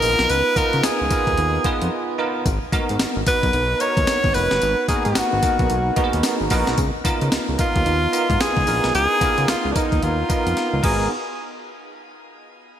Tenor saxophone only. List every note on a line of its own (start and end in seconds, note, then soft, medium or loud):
0.00 0.32 A#4 loud
0.30 0.59 B4 loud
0.57 0.86 A#4 loud
0.84 2.19 G#4 loud
3.27 3.82 B4 loud
3.81 4.36 C#5 loud
4.34 4.88 B4 loud
4.88 5.04 G#4 medium
5.05 6.47 F#4 loud
7.60 8.43 F4 loud
8.41 8.94 G#4 loud
8.95 9.51 G#4 loud
9.49 9.73 F4 loud
9.71 9.79 D4 medium
9.77 10.05 D#4 medium
10.03 10.84 F4 medium
10.84 11.09 G#4 medium